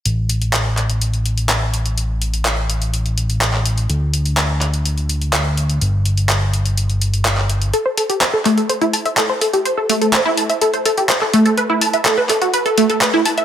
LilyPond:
<<
  \new Staff \with { instrumentName = "Synth pluck" } { \time 4/4 \key a \minor \tempo 4 = 125 r1 | r1 | r1 | r1 |
a'16 c''16 a'16 g'16 c''16 a'16 a16 a'16 c''16 e'16 a''16 e''16 a'16 c''16 a'16 g'16 | c''16 a'16 a16 a'16 c''16 e'16 a''16 e''16 a'16 c''16 a'16 g'16 c''16 a'16 a16 a'16 | b'16 e'16 a''16 e''16 a'16 b'16 a'16 fis'16 b'16 a'16 a16 a'16 b'16 e'16 a''16 e''16 | }
  \new Staff \with { instrumentName = "Analog synth bass" } { \clef bass \time 4/4 \key a \minor a,,1~ | a,,1 | d,1 | g,,1 |
r1 | r1 | r1 | }
  \new DrumStaff \with { instrumentName = "Drums" } \drummode { \time 4/4 hh8 hh16 hh16 <hc hh>8 <hc hh>16 hh16 hh16 hh16 hh16 hh16 <hc hh>8 hh16 hh16 | hh8 hh16 hh16 <hc hh>8 hh16 hh16 hh16 hh16 hh16 hh16 <hc hh>16 hc16 hh16 hh16 | hh8 hh16 hh16 <hc hh>8 <hc hh>16 hh16 hh16 hh16 hh16 hh16 <hc hh>8 hh16 hh16 | hh8 hh16 hh16 <hc hh>8 hh16 hh16 hh16 hh16 hh16 hh16 <hc hh>16 hc16 hh16 hh16 |
hh8 hho16 hh16 <hc hh>8 <hc hho>16 hh16 hh16 hh16 hho16 hh16 <hc hh>8 hho16 hh16 | hh8 hho16 hh16 <hc hh>8 hho16 hh16 hh16 hh16 hho16 hh16 <hc hh>16 hc16 hho16 hh16 | hh8 hho16 hh16 <hc hh>8 <hc hho>16 hh16 hh16 hh16 hho16 hh16 <hc hh>8 hho16 hh16 | }
>>